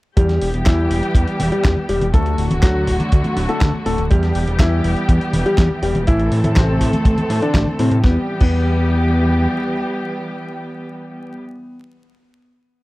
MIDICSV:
0, 0, Header, 1, 5, 480
1, 0, Start_track
1, 0, Key_signature, 1, "minor"
1, 0, Tempo, 491803
1, 165, Time_signature, 4, 2, 24, 8
1, 12523, End_track
2, 0, Start_track
2, 0, Title_t, "Grand piano"
2, 0, Program_c, 0, 0
2, 162, Note_on_c, 0, 55, 75
2, 162, Note_on_c, 0, 67, 98
2, 456, Note_off_c, 0, 55, 0
2, 457, Note_off_c, 0, 67, 0
2, 643, Note_on_c, 0, 64, 92
2, 644, Note_on_c, 0, 52, 77
2, 937, Note_off_c, 0, 64, 0
2, 938, Note_off_c, 0, 52, 0
2, 1484, Note_on_c, 0, 55, 76
2, 1484, Note_on_c, 0, 67, 93
2, 1704, Note_off_c, 0, 55, 0
2, 1704, Note_off_c, 0, 67, 0
2, 1844, Note_on_c, 0, 55, 78
2, 1844, Note_on_c, 0, 67, 88
2, 1991, Note_off_c, 0, 55, 0
2, 1991, Note_off_c, 0, 67, 0
2, 2084, Note_on_c, 0, 57, 75
2, 2085, Note_on_c, 0, 69, 99
2, 2377, Note_off_c, 0, 57, 0
2, 2378, Note_off_c, 0, 69, 0
2, 2562, Note_on_c, 0, 54, 78
2, 2562, Note_on_c, 0, 66, 96
2, 2857, Note_off_c, 0, 54, 0
2, 2857, Note_off_c, 0, 66, 0
2, 3404, Note_on_c, 0, 69, 97
2, 3405, Note_on_c, 0, 57, 79
2, 3624, Note_off_c, 0, 69, 0
2, 3625, Note_off_c, 0, 57, 0
2, 3766, Note_on_c, 0, 57, 79
2, 3766, Note_on_c, 0, 69, 91
2, 3912, Note_off_c, 0, 57, 0
2, 3912, Note_off_c, 0, 69, 0
2, 4005, Note_on_c, 0, 55, 78
2, 4006, Note_on_c, 0, 67, 98
2, 4298, Note_off_c, 0, 55, 0
2, 4299, Note_off_c, 0, 67, 0
2, 4487, Note_on_c, 0, 52, 80
2, 4488, Note_on_c, 0, 64, 95
2, 4779, Note_off_c, 0, 52, 0
2, 4779, Note_off_c, 0, 64, 0
2, 5327, Note_on_c, 0, 55, 79
2, 5327, Note_on_c, 0, 67, 96
2, 5546, Note_off_c, 0, 55, 0
2, 5546, Note_off_c, 0, 67, 0
2, 5686, Note_on_c, 0, 55, 77
2, 5686, Note_on_c, 0, 67, 93
2, 5832, Note_off_c, 0, 55, 0
2, 5832, Note_off_c, 0, 67, 0
2, 5927, Note_on_c, 0, 52, 78
2, 5927, Note_on_c, 0, 64, 102
2, 6219, Note_off_c, 0, 52, 0
2, 6219, Note_off_c, 0, 64, 0
2, 6409, Note_on_c, 0, 48, 79
2, 6410, Note_on_c, 0, 60, 97
2, 6700, Note_off_c, 0, 48, 0
2, 6700, Note_off_c, 0, 60, 0
2, 7245, Note_on_c, 0, 62, 94
2, 7246, Note_on_c, 0, 50, 77
2, 7465, Note_off_c, 0, 50, 0
2, 7465, Note_off_c, 0, 62, 0
2, 7604, Note_on_c, 0, 48, 78
2, 7606, Note_on_c, 0, 60, 90
2, 7751, Note_off_c, 0, 48, 0
2, 7752, Note_off_c, 0, 60, 0
2, 7843, Note_on_c, 0, 59, 90
2, 7978, Note_off_c, 0, 59, 0
2, 8204, Note_on_c, 0, 59, 95
2, 11459, Note_off_c, 0, 59, 0
2, 12523, End_track
3, 0, Start_track
3, 0, Title_t, "String section"
3, 0, Program_c, 1, 48
3, 166, Note_on_c, 1, 59, 75
3, 167, Note_on_c, 1, 52, 84
3, 167, Note_on_c, 1, 55, 78
3, 167, Note_on_c, 1, 67, 91
3, 2066, Note_off_c, 1, 59, 0
3, 2067, Note_off_c, 1, 52, 0
3, 2067, Note_off_c, 1, 55, 0
3, 2067, Note_off_c, 1, 67, 0
3, 2082, Note_on_c, 1, 57, 79
3, 2083, Note_on_c, 1, 50, 85
3, 2083, Note_on_c, 1, 54, 77
3, 2083, Note_on_c, 1, 66, 93
3, 3984, Note_off_c, 1, 57, 0
3, 3985, Note_off_c, 1, 50, 0
3, 3985, Note_off_c, 1, 54, 0
3, 3985, Note_off_c, 1, 66, 0
3, 4002, Note_on_c, 1, 52, 86
3, 4002, Note_on_c, 1, 55, 76
3, 4002, Note_on_c, 1, 67, 94
3, 4003, Note_on_c, 1, 59, 76
3, 5904, Note_off_c, 1, 55, 0
3, 5905, Note_off_c, 1, 59, 0
3, 5905, Note_off_c, 1, 67, 0
3, 5929, Note_on_c, 1, 60, 77
3, 5930, Note_on_c, 1, 57, 76
3, 5930, Note_on_c, 1, 69, 94
3, 7805, Note_off_c, 1, 52, 0
3, 7828, Note_off_c, 1, 57, 0
3, 7828, Note_off_c, 1, 60, 0
3, 7828, Note_off_c, 1, 69, 0
3, 7844, Note_on_c, 1, 52, 83
3, 7845, Note_on_c, 1, 67, 93
3, 7846, Note_on_c, 1, 55, 77
3, 7846, Note_on_c, 1, 59, 76
3, 11099, Note_off_c, 1, 52, 0
3, 11100, Note_off_c, 1, 67, 0
3, 11101, Note_off_c, 1, 59, 0
3, 11102, Note_off_c, 1, 55, 0
3, 12523, End_track
4, 0, Start_track
4, 0, Title_t, "Analog synth bass"
4, 0, Program_c, 2, 38
4, 166, Note_on_c, 2, 40, 100
4, 381, Note_off_c, 2, 40, 0
4, 406, Note_on_c, 2, 28, 86
4, 513, Note_off_c, 2, 28, 0
4, 526, Note_on_c, 2, 28, 81
4, 633, Note_off_c, 2, 28, 0
4, 651, Note_on_c, 2, 40, 100
4, 863, Note_off_c, 2, 40, 0
4, 884, Note_on_c, 2, 28, 96
4, 992, Note_off_c, 2, 28, 0
4, 1119, Note_on_c, 2, 40, 101
4, 1230, Note_off_c, 2, 40, 0
4, 1364, Note_on_c, 2, 28, 94
4, 1472, Note_off_c, 2, 28, 0
4, 1607, Note_on_c, 2, 40, 101
4, 1714, Note_off_c, 2, 40, 0
4, 1845, Note_on_c, 2, 28, 87
4, 1953, Note_off_c, 2, 28, 0
4, 1965, Note_on_c, 2, 28, 83
4, 2073, Note_off_c, 2, 28, 0
4, 2086, Note_on_c, 2, 38, 100
4, 2301, Note_off_c, 2, 38, 0
4, 2324, Note_on_c, 2, 26, 87
4, 2432, Note_off_c, 2, 26, 0
4, 2444, Note_on_c, 2, 26, 81
4, 2552, Note_off_c, 2, 26, 0
4, 2563, Note_on_c, 2, 38, 99
4, 2780, Note_off_c, 2, 38, 0
4, 2805, Note_on_c, 2, 26, 98
4, 2913, Note_off_c, 2, 26, 0
4, 3051, Note_on_c, 2, 38, 92
4, 3156, Note_off_c, 2, 38, 0
4, 3284, Note_on_c, 2, 26, 94
4, 3392, Note_off_c, 2, 26, 0
4, 3526, Note_on_c, 2, 38, 100
4, 3633, Note_off_c, 2, 38, 0
4, 3766, Note_on_c, 2, 26, 90
4, 3873, Note_off_c, 2, 26, 0
4, 3886, Note_on_c, 2, 26, 90
4, 3993, Note_off_c, 2, 26, 0
4, 4015, Note_on_c, 2, 40, 99
4, 4225, Note_off_c, 2, 40, 0
4, 4246, Note_on_c, 2, 28, 86
4, 4353, Note_off_c, 2, 28, 0
4, 4367, Note_on_c, 2, 28, 81
4, 4474, Note_off_c, 2, 28, 0
4, 4483, Note_on_c, 2, 40, 101
4, 4700, Note_off_c, 2, 40, 0
4, 4726, Note_on_c, 2, 28, 98
4, 4833, Note_off_c, 2, 28, 0
4, 4966, Note_on_c, 2, 40, 101
4, 5073, Note_off_c, 2, 40, 0
4, 5206, Note_on_c, 2, 28, 93
4, 5313, Note_off_c, 2, 28, 0
4, 5446, Note_on_c, 2, 40, 102
4, 5553, Note_off_c, 2, 40, 0
4, 5684, Note_on_c, 2, 28, 89
4, 5792, Note_off_c, 2, 28, 0
4, 5805, Note_on_c, 2, 28, 83
4, 5913, Note_off_c, 2, 28, 0
4, 5934, Note_on_c, 2, 33, 101
4, 6145, Note_off_c, 2, 33, 0
4, 6165, Note_on_c, 2, 45, 88
4, 6273, Note_off_c, 2, 45, 0
4, 6287, Note_on_c, 2, 45, 83
4, 6393, Note_off_c, 2, 45, 0
4, 6410, Note_on_c, 2, 33, 97
4, 6623, Note_off_c, 2, 33, 0
4, 6646, Note_on_c, 2, 45, 99
4, 6753, Note_off_c, 2, 45, 0
4, 6883, Note_on_c, 2, 33, 90
4, 6992, Note_off_c, 2, 33, 0
4, 7123, Note_on_c, 2, 45, 97
4, 7231, Note_off_c, 2, 45, 0
4, 7361, Note_on_c, 2, 33, 99
4, 7471, Note_off_c, 2, 33, 0
4, 7605, Note_on_c, 2, 45, 92
4, 7713, Note_off_c, 2, 45, 0
4, 7723, Note_on_c, 2, 45, 90
4, 7832, Note_off_c, 2, 45, 0
4, 7850, Note_on_c, 2, 40, 98
4, 7981, Note_off_c, 2, 40, 0
4, 8208, Note_on_c, 2, 40, 95
4, 9248, Note_off_c, 2, 40, 0
4, 12523, End_track
5, 0, Start_track
5, 0, Title_t, "Drums"
5, 164, Note_on_c, 9, 42, 83
5, 165, Note_on_c, 9, 36, 116
5, 262, Note_off_c, 9, 42, 0
5, 263, Note_off_c, 9, 36, 0
5, 285, Note_on_c, 9, 38, 38
5, 285, Note_on_c, 9, 42, 38
5, 383, Note_off_c, 9, 38, 0
5, 383, Note_off_c, 9, 42, 0
5, 405, Note_on_c, 9, 46, 105
5, 502, Note_off_c, 9, 46, 0
5, 526, Note_on_c, 9, 42, 55
5, 624, Note_off_c, 9, 42, 0
5, 645, Note_on_c, 9, 38, 125
5, 645, Note_on_c, 9, 39, 107
5, 645, Note_on_c, 9, 42, 86
5, 651, Note_on_c, 9, 36, 125
5, 743, Note_off_c, 9, 38, 0
5, 743, Note_off_c, 9, 39, 0
5, 743, Note_off_c, 9, 42, 0
5, 748, Note_off_c, 9, 36, 0
5, 886, Note_on_c, 9, 46, 108
5, 984, Note_off_c, 9, 46, 0
5, 1004, Note_on_c, 9, 42, 56
5, 1102, Note_off_c, 9, 42, 0
5, 1119, Note_on_c, 9, 36, 119
5, 1126, Note_on_c, 9, 42, 83
5, 1217, Note_off_c, 9, 36, 0
5, 1223, Note_off_c, 9, 42, 0
5, 1245, Note_on_c, 9, 42, 40
5, 1343, Note_off_c, 9, 42, 0
5, 1364, Note_on_c, 9, 46, 105
5, 1364, Note_on_c, 9, 63, 78
5, 1462, Note_off_c, 9, 46, 0
5, 1462, Note_off_c, 9, 63, 0
5, 1485, Note_on_c, 9, 42, 55
5, 1583, Note_off_c, 9, 42, 0
5, 1606, Note_on_c, 9, 36, 119
5, 1606, Note_on_c, 9, 38, 117
5, 1606, Note_on_c, 9, 39, 106
5, 1606, Note_on_c, 9, 42, 85
5, 1703, Note_off_c, 9, 38, 0
5, 1703, Note_off_c, 9, 39, 0
5, 1703, Note_off_c, 9, 42, 0
5, 1704, Note_off_c, 9, 36, 0
5, 1725, Note_on_c, 9, 63, 60
5, 1823, Note_off_c, 9, 63, 0
5, 1845, Note_on_c, 9, 46, 104
5, 1942, Note_off_c, 9, 46, 0
5, 1966, Note_on_c, 9, 42, 55
5, 1966, Note_on_c, 9, 63, 60
5, 2064, Note_off_c, 9, 42, 0
5, 2064, Note_off_c, 9, 63, 0
5, 2085, Note_on_c, 9, 42, 77
5, 2086, Note_on_c, 9, 36, 127
5, 2183, Note_off_c, 9, 36, 0
5, 2183, Note_off_c, 9, 42, 0
5, 2205, Note_on_c, 9, 42, 38
5, 2303, Note_off_c, 9, 42, 0
5, 2325, Note_on_c, 9, 46, 100
5, 2423, Note_off_c, 9, 46, 0
5, 2446, Note_on_c, 9, 42, 54
5, 2446, Note_on_c, 9, 63, 77
5, 2544, Note_off_c, 9, 42, 0
5, 2544, Note_off_c, 9, 63, 0
5, 2564, Note_on_c, 9, 36, 121
5, 2566, Note_on_c, 9, 38, 127
5, 2566, Note_on_c, 9, 39, 112
5, 2566, Note_on_c, 9, 42, 82
5, 2662, Note_off_c, 9, 36, 0
5, 2663, Note_off_c, 9, 38, 0
5, 2663, Note_off_c, 9, 39, 0
5, 2663, Note_off_c, 9, 42, 0
5, 2804, Note_on_c, 9, 36, 64
5, 2805, Note_on_c, 9, 46, 100
5, 2901, Note_off_c, 9, 36, 0
5, 2903, Note_off_c, 9, 46, 0
5, 2927, Note_on_c, 9, 42, 54
5, 2927, Note_on_c, 9, 63, 61
5, 3024, Note_off_c, 9, 42, 0
5, 3024, Note_off_c, 9, 63, 0
5, 3045, Note_on_c, 9, 42, 84
5, 3050, Note_on_c, 9, 36, 127
5, 3143, Note_off_c, 9, 42, 0
5, 3147, Note_off_c, 9, 36, 0
5, 3166, Note_on_c, 9, 42, 40
5, 3166, Note_on_c, 9, 63, 76
5, 3263, Note_off_c, 9, 42, 0
5, 3263, Note_off_c, 9, 63, 0
5, 3286, Note_on_c, 9, 38, 39
5, 3286, Note_on_c, 9, 46, 102
5, 3384, Note_off_c, 9, 38, 0
5, 3384, Note_off_c, 9, 46, 0
5, 3406, Note_on_c, 9, 42, 53
5, 3504, Note_off_c, 9, 42, 0
5, 3526, Note_on_c, 9, 36, 127
5, 3526, Note_on_c, 9, 38, 124
5, 3526, Note_on_c, 9, 39, 106
5, 3526, Note_on_c, 9, 42, 81
5, 3623, Note_off_c, 9, 36, 0
5, 3624, Note_off_c, 9, 38, 0
5, 3624, Note_off_c, 9, 39, 0
5, 3624, Note_off_c, 9, 42, 0
5, 3646, Note_on_c, 9, 63, 57
5, 3744, Note_off_c, 9, 63, 0
5, 3767, Note_on_c, 9, 46, 102
5, 3864, Note_off_c, 9, 46, 0
5, 3886, Note_on_c, 9, 42, 57
5, 3983, Note_off_c, 9, 42, 0
5, 4007, Note_on_c, 9, 42, 77
5, 4014, Note_on_c, 9, 36, 118
5, 4105, Note_off_c, 9, 42, 0
5, 4112, Note_off_c, 9, 36, 0
5, 4127, Note_on_c, 9, 38, 39
5, 4127, Note_on_c, 9, 42, 36
5, 4224, Note_off_c, 9, 38, 0
5, 4224, Note_off_c, 9, 42, 0
5, 4247, Note_on_c, 9, 46, 100
5, 4344, Note_off_c, 9, 46, 0
5, 4368, Note_on_c, 9, 42, 53
5, 4466, Note_off_c, 9, 42, 0
5, 4483, Note_on_c, 9, 36, 127
5, 4487, Note_on_c, 9, 38, 127
5, 4487, Note_on_c, 9, 39, 108
5, 4487, Note_on_c, 9, 42, 80
5, 4581, Note_off_c, 9, 36, 0
5, 4584, Note_off_c, 9, 38, 0
5, 4584, Note_off_c, 9, 39, 0
5, 4584, Note_off_c, 9, 42, 0
5, 4727, Note_on_c, 9, 46, 100
5, 4825, Note_off_c, 9, 46, 0
5, 4847, Note_on_c, 9, 42, 54
5, 4944, Note_off_c, 9, 42, 0
5, 4965, Note_on_c, 9, 36, 124
5, 4967, Note_on_c, 9, 42, 80
5, 5063, Note_off_c, 9, 36, 0
5, 5065, Note_off_c, 9, 42, 0
5, 5087, Note_on_c, 9, 42, 38
5, 5185, Note_off_c, 9, 42, 0
5, 5206, Note_on_c, 9, 46, 104
5, 5206, Note_on_c, 9, 63, 80
5, 5304, Note_off_c, 9, 46, 0
5, 5304, Note_off_c, 9, 63, 0
5, 5327, Note_on_c, 9, 42, 53
5, 5425, Note_off_c, 9, 42, 0
5, 5445, Note_on_c, 9, 36, 127
5, 5447, Note_on_c, 9, 38, 126
5, 5447, Note_on_c, 9, 39, 108
5, 5447, Note_on_c, 9, 42, 76
5, 5543, Note_off_c, 9, 36, 0
5, 5544, Note_off_c, 9, 38, 0
5, 5544, Note_off_c, 9, 39, 0
5, 5544, Note_off_c, 9, 42, 0
5, 5566, Note_on_c, 9, 63, 59
5, 5664, Note_off_c, 9, 63, 0
5, 5686, Note_on_c, 9, 46, 105
5, 5784, Note_off_c, 9, 46, 0
5, 5807, Note_on_c, 9, 42, 53
5, 5807, Note_on_c, 9, 63, 64
5, 5904, Note_off_c, 9, 42, 0
5, 5904, Note_off_c, 9, 63, 0
5, 5926, Note_on_c, 9, 42, 76
5, 5934, Note_on_c, 9, 36, 127
5, 6023, Note_off_c, 9, 42, 0
5, 6031, Note_off_c, 9, 36, 0
5, 6046, Note_on_c, 9, 42, 34
5, 6144, Note_off_c, 9, 42, 0
5, 6166, Note_on_c, 9, 46, 101
5, 6263, Note_off_c, 9, 46, 0
5, 6286, Note_on_c, 9, 42, 54
5, 6286, Note_on_c, 9, 63, 83
5, 6384, Note_off_c, 9, 42, 0
5, 6384, Note_off_c, 9, 63, 0
5, 6406, Note_on_c, 9, 38, 126
5, 6406, Note_on_c, 9, 39, 104
5, 6406, Note_on_c, 9, 42, 78
5, 6410, Note_on_c, 9, 36, 127
5, 6504, Note_off_c, 9, 38, 0
5, 6504, Note_off_c, 9, 39, 0
5, 6504, Note_off_c, 9, 42, 0
5, 6508, Note_off_c, 9, 36, 0
5, 6645, Note_on_c, 9, 36, 68
5, 6645, Note_on_c, 9, 46, 107
5, 6743, Note_off_c, 9, 36, 0
5, 6743, Note_off_c, 9, 46, 0
5, 6766, Note_on_c, 9, 42, 51
5, 6766, Note_on_c, 9, 63, 63
5, 6863, Note_off_c, 9, 42, 0
5, 6863, Note_off_c, 9, 63, 0
5, 6883, Note_on_c, 9, 36, 126
5, 6885, Note_on_c, 9, 42, 78
5, 6980, Note_off_c, 9, 36, 0
5, 6983, Note_off_c, 9, 42, 0
5, 7005, Note_on_c, 9, 42, 37
5, 7005, Note_on_c, 9, 63, 83
5, 7102, Note_off_c, 9, 42, 0
5, 7102, Note_off_c, 9, 63, 0
5, 7125, Note_on_c, 9, 38, 39
5, 7125, Note_on_c, 9, 46, 104
5, 7222, Note_off_c, 9, 38, 0
5, 7222, Note_off_c, 9, 46, 0
5, 7246, Note_on_c, 9, 42, 50
5, 7343, Note_off_c, 9, 42, 0
5, 7360, Note_on_c, 9, 36, 122
5, 7366, Note_on_c, 9, 38, 126
5, 7366, Note_on_c, 9, 39, 101
5, 7366, Note_on_c, 9, 42, 78
5, 7458, Note_off_c, 9, 36, 0
5, 7463, Note_off_c, 9, 38, 0
5, 7463, Note_off_c, 9, 39, 0
5, 7463, Note_off_c, 9, 42, 0
5, 7485, Note_on_c, 9, 63, 63
5, 7583, Note_off_c, 9, 63, 0
5, 7604, Note_on_c, 9, 46, 104
5, 7702, Note_off_c, 9, 46, 0
5, 7724, Note_on_c, 9, 42, 51
5, 7822, Note_off_c, 9, 42, 0
5, 7843, Note_on_c, 9, 38, 86
5, 7848, Note_on_c, 9, 36, 110
5, 7941, Note_off_c, 9, 38, 0
5, 7946, Note_off_c, 9, 36, 0
5, 8204, Note_on_c, 9, 49, 91
5, 8208, Note_on_c, 9, 36, 115
5, 8302, Note_off_c, 9, 49, 0
5, 8306, Note_off_c, 9, 36, 0
5, 12523, End_track
0, 0, End_of_file